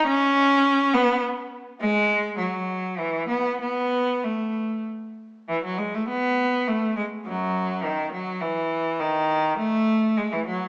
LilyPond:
\new Staff \with { instrumentName = "Cello" } { \clef bass \time 3/4 \key b \dorian \tempo 4 = 102 cis'4. b8 r4 | gis4 fis4 e8 b8 | b4 a4 r4 | \key fis \dorian e16 fis16 gis16 a16 b4 a8 gis8 |
<fis, fis>4 dis8 fis8 e4 | dis4 a4 gis16 e16 fis8 | }